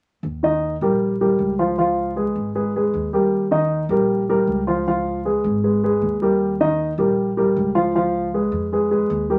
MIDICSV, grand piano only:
0, 0, Header, 1, 2, 480
1, 0, Start_track
1, 0, Key_signature, -3, "major"
1, 0, Tempo, 385604
1, 296, Time_signature, 4, 2, 24, 8
1, 11686, End_track
2, 0, Start_track
2, 0, Title_t, "Grand piano"
2, 0, Program_c, 0, 0
2, 535, Note_on_c, 0, 51, 68
2, 541, Note_on_c, 0, 63, 66
2, 548, Note_on_c, 0, 75, 75
2, 929, Note_off_c, 0, 51, 0
2, 932, Note_off_c, 0, 63, 0
2, 936, Note_off_c, 0, 75, 0
2, 1022, Note_on_c, 0, 55, 61
2, 1022, Note_on_c, 0, 67, 60
2, 1029, Note_on_c, 0, 70, 58
2, 1413, Note_off_c, 0, 55, 0
2, 1413, Note_off_c, 0, 67, 0
2, 1417, Note_off_c, 0, 70, 0
2, 1506, Note_on_c, 0, 67, 58
2, 1507, Note_on_c, 0, 55, 57
2, 1507, Note_on_c, 0, 70, 56
2, 1895, Note_off_c, 0, 67, 0
2, 1896, Note_off_c, 0, 55, 0
2, 1896, Note_off_c, 0, 70, 0
2, 1977, Note_on_c, 0, 53, 68
2, 1979, Note_on_c, 0, 65, 62
2, 1983, Note_on_c, 0, 77, 61
2, 2173, Note_off_c, 0, 53, 0
2, 2174, Note_off_c, 0, 65, 0
2, 2177, Note_off_c, 0, 77, 0
2, 2217, Note_on_c, 0, 53, 59
2, 2218, Note_on_c, 0, 65, 62
2, 2224, Note_on_c, 0, 77, 67
2, 2610, Note_off_c, 0, 53, 0
2, 2611, Note_off_c, 0, 65, 0
2, 2614, Note_off_c, 0, 77, 0
2, 2691, Note_on_c, 0, 56, 56
2, 2697, Note_on_c, 0, 68, 60
2, 2701, Note_on_c, 0, 71, 54
2, 3086, Note_off_c, 0, 56, 0
2, 3090, Note_off_c, 0, 68, 0
2, 3092, Note_off_c, 0, 71, 0
2, 3178, Note_on_c, 0, 56, 52
2, 3178, Note_on_c, 0, 68, 60
2, 3182, Note_on_c, 0, 71, 61
2, 3374, Note_off_c, 0, 56, 0
2, 3374, Note_off_c, 0, 68, 0
2, 3376, Note_off_c, 0, 71, 0
2, 3435, Note_on_c, 0, 56, 56
2, 3436, Note_on_c, 0, 68, 62
2, 3440, Note_on_c, 0, 71, 55
2, 3820, Note_off_c, 0, 56, 0
2, 3821, Note_off_c, 0, 68, 0
2, 3823, Note_off_c, 0, 71, 0
2, 3896, Note_on_c, 0, 55, 58
2, 3901, Note_on_c, 0, 67, 60
2, 3903, Note_on_c, 0, 70, 58
2, 4289, Note_off_c, 0, 55, 0
2, 4292, Note_off_c, 0, 67, 0
2, 4293, Note_off_c, 0, 70, 0
2, 4371, Note_on_c, 0, 51, 78
2, 4375, Note_on_c, 0, 63, 75
2, 4378, Note_on_c, 0, 75, 67
2, 4766, Note_off_c, 0, 51, 0
2, 4769, Note_off_c, 0, 63, 0
2, 4770, Note_off_c, 0, 75, 0
2, 4858, Note_on_c, 0, 55, 56
2, 4859, Note_on_c, 0, 67, 60
2, 4864, Note_on_c, 0, 70, 66
2, 5250, Note_off_c, 0, 55, 0
2, 5251, Note_off_c, 0, 67, 0
2, 5254, Note_off_c, 0, 70, 0
2, 5344, Note_on_c, 0, 67, 60
2, 5345, Note_on_c, 0, 55, 63
2, 5348, Note_on_c, 0, 70, 70
2, 5734, Note_off_c, 0, 55, 0
2, 5734, Note_off_c, 0, 67, 0
2, 5736, Note_off_c, 0, 70, 0
2, 5815, Note_on_c, 0, 65, 73
2, 5817, Note_on_c, 0, 53, 69
2, 5826, Note_on_c, 0, 77, 62
2, 6012, Note_off_c, 0, 65, 0
2, 6013, Note_off_c, 0, 53, 0
2, 6018, Note_off_c, 0, 77, 0
2, 6063, Note_on_c, 0, 53, 58
2, 6070, Note_on_c, 0, 65, 63
2, 6070, Note_on_c, 0, 77, 68
2, 6453, Note_off_c, 0, 53, 0
2, 6458, Note_off_c, 0, 65, 0
2, 6458, Note_off_c, 0, 77, 0
2, 6537, Note_on_c, 0, 56, 58
2, 6541, Note_on_c, 0, 68, 59
2, 6544, Note_on_c, 0, 71, 55
2, 6930, Note_off_c, 0, 56, 0
2, 6932, Note_off_c, 0, 68, 0
2, 6934, Note_off_c, 0, 71, 0
2, 7018, Note_on_c, 0, 56, 58
2, 7020, Note_on_c, 0, 68, 52
2, 7024, Note_on_c, 0, 71, 51
2, 7213, Note_off_c, 0, 56, 0
2, 7215, Note_off_c, 0, 68, 0
2, 7217, Note_off_c, 0, 71, 0
2, 7264, Note_on_c, 0, 56, 62
2, 7269, Note_on_c, 0, 68, 68
2, 7273, Note_on_c, 0, 71, 63
2, 7654, Note_off_c, 0, 56, 0
2, 7657, Note_off_c, 0, 68, 0
2, 7659, Note_off_c, 0, 71, 0
2, 7741, Note_on_c, 0, 55, 60
2, 7746, Note_on_c, 0, 67, 61
2, 7752, Note_on_c, 0, 70, 62
2, 8132, Note_off_c, 0, 55, 0
2, 8135, Note_off_c, 0, 67, 0
2, 8139, Note_off_c, 0, 70, 0
2, 8221, Note_on_c, 0, 51, 77
2, 8225, Note_on_c, 0, 63, 71
2, 8225, Note_on_c, 0, 75, 77
2, 8612, Note_off_c, 0, 51, 0
2, 8614, Note_off_c, 0, 63, 0
2, 8615, Note_off_c, 0, 75, 0
2, 8695, Note_on_c, 0, 55, 59
2, 8698, Note_on_c, 0, 67, 59
2, 8700, Note_on_c, 0, 70, 55
2, 9089, Note_off_c, 0, 55, 0
2, 9090, Note_off_c, 0, 67, 0
2, 9092, Note_off_c, 0, 70, 0
2, 9176, Note_on_c, 0, 67, 59
2, 9177, Note_on_c, 0, 55, 63
2, 9182, Note_on_c, 0, 70, 61
2, 9569, Note_off_c, 0, 67, 0
2, 9570, Note_off_c, 0, 55, 0
2, 9573, Note_off_c, 0, 70, 0
2, 9646, Note_on_c, 0, 65, 68
2, 9648, Note_on_c, 0, 53, 65
2, 9650, Note_on_c, 0, 77, 72
2, 9846, Note_off_c, 0, 65, 0
2, 9848, Note_off_c, 0, 53, 0
2, 9849, Note_off_c, 0, 77, 0
2, 9900, Note_on_c, 0, 53, 73
2, 9901, Note_on_c, 0, 65, 66
2, 9907, Note_on_c, 0, 77, 69
2, 10291, Note_off_c, 0, 53, 0
2, 10292, Note_off_c, 0, 65, 0
2, 10295, Note_off_c, 0, 77, 0
2, 10382, Note_on_c, 0, 56, 57
2, 10385, Note_on_c, 0, 68, 59
2, 10387, Note_on_c, 0, 71, 55
2, 10773, Note_off_c, 0, 56, 0
2, 10774, Note_off_c, 0, 68, 0
2, 10775, Note_off_c, 0, 71, 0
2, 10860, Note_on_c, 0, 56, 58
2, 10867, Note_on_c, 0, 68, 61
2, 10872, Note_on_c, 0, 71, 55
2, 11054, Note_off_c, 0, 56, 0
2, 11059, Note_off_c, 0, 68, 0
2, 11062, Note_off_c, 0, 71, 0
2, 11093, Note_on_c, 0, 68, 65
2, 11094, Note_on_c, 0, 56, 61
2, 11104, Note_on_c, 0, 71, 60
2, 11487, Note_off_c, 0, 68, 0
2, 11488, Note_off_c, 0, 56, 0
2, 11494, Note_off_c, 0, 71, 0
2, 11574, Note_on_c, 0, 55, 53
2, 11577, Note_on_c, 0, 67, 65
2, 11579, Note_on_c, 0, 70, 60
2, 11686, Note_off_c, 0, 55, 0
2, 11686, Note_off_c, 0, 67, 0
2, 11686, Note_off_c, 0, 70, 0
2, 11686, End_track
0, 0, End_of_file